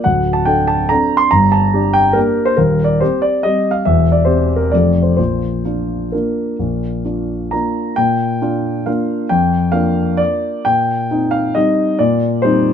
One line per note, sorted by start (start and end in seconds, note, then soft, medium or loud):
0.04 0.46 D1 soft
0.04 0.46 D2 soft
0.04 0.32 F#5 medium
0.33 0.47 A5 medium
0.45 0.86 D4 soft
0.45 0.86 A4 soft
0.45 0.68 G5 medium
0.68 0.90 A5 medium
0.89 1.28 C4 soft
0.89 1.28 D4 soft
0.89 1.29 A4 soft
0.89 1.18 A#5 medium
1.17 1.32 C6 medium
1.31 1.72 G1 soft
1.31 1.72 G2 soft
1.31 1.52 A#5 medium
1.52 1.94 A5 medium
1.74 2.12 D4 soft
1.74 2.12 G4 soft
1.93 2.16 G5 medium
2.13 2.54 A#3 soft
2.13 2.54 D4 soft
2.13 2.54 G4 soft
2.13 2.47 A#4 medium
2.46 2.57 C5 medium
2.57 2.99 D#1 soft
2.57 2.99 D#2 soft
2.57 2.86 A#4 medium
2.84 3.00 D5 medium
3.01 3.40 C4 soft
3.01 3.41 G4 soft
3.01 3.22 C5 medium
3.22 3.44 D5 medium
3.43 3.82 G3 soft
3.43 3.82 C4 soft
3.43 3.82 G4 soft
3.43 3.72 D#5 medium
3.71 3.85 F5 medium
3.85 4.26 E1 soft
3.85 4.26 E2 soft
3.85 4.12 E5 medium
4.12 4.26 D5 medium
4.25 4.68 C4 soft
4.25 4.68 G4 soft
4.25 4.56 C5 medium
4.56 4.72 A#4 medium
4.72 5.18 F1 soft
4.72 5.18 F2 soft
4.72 5.15 A3 soft
4.72 5.15 C4 soft
4.72 5.16 F4 soft
4.72 5.03 D5 medium
5.03 5.15 C5 soft
5.17 5.64 A#1 soft
5.17 5.64 A#2 soft
5.17 6.12 C5 soft
5.65 6.09 D4 soft
5.65 6.09 F4 soft
6.12 6.56 A#3 soft
6.12 6.56 D4 soft
6.12 6.56 F4 soft
6.12 7.52 A#4 soft
6.59 7.04 A#1 soft
6.59 7.04 A#2 soft
7.05 7.48 D4 soft
7.05 7.49 F4 soft
7.51 7.94 A#3 soft
7.51 7.94 D4 soft
7.51 7.94 F4 soft
7.51 7.97 A#5 soft
7.96 8.41 A#2 soft
7.96 8.86 G5 medium
8.42 8.83 D4 soft
8.42 8.83 F4 soft
8.86 9.26 A#3 soft
8.86 9.27 D4 soft
8.86 9.27 F4 soft
8.86 9.30 F5 soft
9.29 9.72 F2 soft
9.29 9.73 G5 medium
9.72 10.61 A#3 soft
9.72 10.62 D4 soft
9.72 10.62 F4 soft
9.72 10.18 F5 medium
10.17 10.65 D5 medium
10.65 11.09 A#2 soft
10.65 11.32 G5 medium
11.11 11.52 C4 soft
11.11 11.52 D#4 soft
11.31 11.55 F5 medium
11.55 11.96 G3 soft
11.55 11.96 C4 soft
11.55 11.97 D#4 soft
11.55 11.99 D#5 medium
11.99 12.41 A#2 soft
11.99 12.42 D5 medium
12.42 12.73 G3 soft
12.42 12.73 C4 soft
12.42 12.73 D#4 soft
12.42 12.73 C5 medium